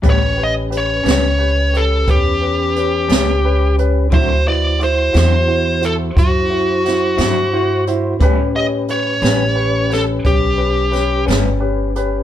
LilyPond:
<<
  \new Staff \with { instrumentName = "Lead electric guitar" } { \time 12/8 \key a \mixolydian \tempo 4. = 59 cis''8 dis''8 cis''8 cis''4 a'8 g'2~ g'8 r8 | c''8 d''8 c''8 c''4 a'8 fis'2~ fis'8 r8 | r8 dis''8 cis''4. a'8 g'4. r4. | }
  \new Staff \with { instrumentName = "Grand piano" } { \time 12/8 \key a \mixolydian <cis' g' b'>8 <cis' g' b'>8 <cis' g' b'>8 <cis' g' b'>8 <cis' g' b'>8 <cis' g' b'>8 <cis' g' b'>8 <cis' g' b'>8 <cis' g' b'>8 <cis' g' b'>8 <cis' g' b'>8 <cis' g' b'>8 | <e' fis' c''>8 <e' fis' b'>8 <e' fis' c''>8 <e' fis' c''>8 <e' fis' c''>8 <e' fis' c''>8 <e' fis' c''>8 <e' fis' c''>8 <e' fis' c''>8 <e' fis' c''>8 <e' fis' c''>8 <e' fis' c''>8 | <cis' g' b'>8 <cis' g' cis''>8 <cis' g' b'>8 <cis' g' b'>8 <cis' g' b'>8 <cis' g' b'>8 <cis' g' cis''>8 <cis' g' b'>8 <cis' g' b'>8 <cis' g' b'>8 <cis' g' b'>8 <cis' g' b'>8 | }
  \new Staff \with { instrumentName = "Tonewheel organ" } { \time 12/8 \key a \mixolydian <cis' g' b'>1. | <e' fis' c''>1. | <cis' g' b'>1. | }
  \new Staff \with { instrumentName = "Clean electric guitar" } { \time 12/8 \key a \mixolydian <a, g b cis'>8 r4 <a, g b cis'>8 r2 r8 <a, g b cis'>8 r4 | <d fis c' e'>8 r4 <d fis c' e'>8 r2 r8 <d fis c' e'>8 r4 | <a, g b cis'>8 r4 <a, g b cis'>8 r2 r8 <a, g b cis'>8 r4 | }
  \new Staff \with { instrumentName = "Upright bass" } { \clef bass \time 12/8 \key a \mixolydian a,,4. cis,4. e,4. cis,4. | d,4. e,4. fis,4. g,4. | a,4. a,,4. b,,4. g,,4. | }
  \new DrumStaff \with { instrumentName = "Drums" } \drummode { \time 12/8 <hh bd>4 hh8 <hh sn>4 hh8 <hh bd>4 hh8 <hh sn>4 hh8 | <hh bd>4 hh8 <hh sn>4 hh8 <hh bd>4 <hh sn>8 <hh sn>4 hh8 | <hh bd>4 hh8 <hh sn>4 <hh sn>8 <hh bd>4 <hh sn>8 <hh sn>4 hh8 | }
>>